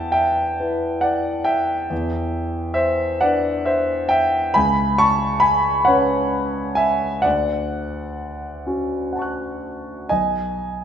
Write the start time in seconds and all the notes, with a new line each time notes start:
Already playing: E2 E5 F#5 G5 A5
0.12 E5 G5
0.60 E4 B4
1.01 D5 F#5
1.44 E5 G5
1.90 E2
2.74 C5 E5
3.21 D4 B4 D5 F#5
3.65 C5 E5
4.09 E5 G5
4.54 C#2 G#5 B5
4.98 A5 C#6
5.40 G#5 B5
5.85 C#4 B4 C#5 F#5
6.75 E5 G#5
7.22 D2 D5 F#5
8.66 C#4 F#4
9.13 F#5 A5
9.19 C#6 F#6
10.09 B1 D#5 G#5